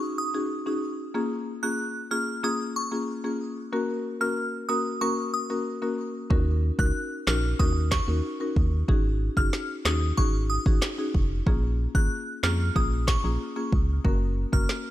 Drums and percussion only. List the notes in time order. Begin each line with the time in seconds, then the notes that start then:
6.31 kick
6.79 kick
7.27 snare, clap
7.60 kick
7.92 kick, snare, clap
8.56 kick
8.89 kick
9.37 kick
9.53 snare
9.85 snare, clap
10.18 kick
10.66 kick
10.82 snare, clap
11.14 kick
11.47 kick
11.95 kick
12.44 snare, clap
12.76 kick
13.08 kick, snare, clap
13.72 kick
14.05 kick
14.53 kick
14.69 snare